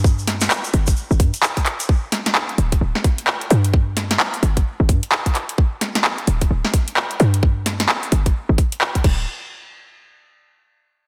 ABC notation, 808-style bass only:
X:1
M:4/4
L:1/16
Q:"Swing 16ths" 1/4=130
K:Gdor
V:1 name="808-style bass" clef=bass
G,,4 z2 G,,,2 z G,,, G,, z4 z | z6 D,,,2 D,,, z4 z G,,2- | G,,4 z2 G,,,2 z G,,, G,, z4 z | z6 D,,,2 D,,, z4 z G,,2- |
G,,4 z2 G,,,2 z G,,, z4 D,,,2 | z16 |]